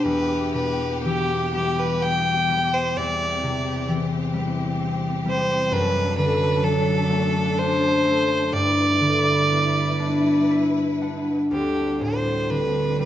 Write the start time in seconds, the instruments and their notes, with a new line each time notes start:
Already playing: harp B2 D4 G4, string section G4
0.03 harp E2, string section E3 B3, fiddle B4
0.54 harp B2, fiddle B4
1.03 harp E3, fiddle G4
1.54 harp G3, fiddle G4
1.79 fiddle B4
2.02 harp B3, fiddle G5
2.49 harp G3
2.74 fiddle C5
2.96 harp E2, string section E3 C4, fiddle D5
3.43 harp C3
3.88 harp E3
4.34 harp G3
4.80 harp C4
5.25 harp G3
5.30 fiddle C5
5.71 harp F#2, string section F#3 D4 A4, fiddle B4
6.18 harp D3, fiddle B4
6.62 harp F#3, fiddle A4
7.10 harp A3
7.57 harp D4, fiddle C5
8.05 harp A3
8.52 harp G2, string section G3 E4 B4, fiddle D5
9.00 harp D3
9.50 harp B3
10.00 harp D4 D5
10.50 harp E4 E5
11.01 harp D4 F#5
11.51 harp D2, string section G3 C4 D4, fiddle G4
12.01 harp A2, fiddle C5
12.50 harp D3, fiddle B4
13.00 harp G3, fiddle B4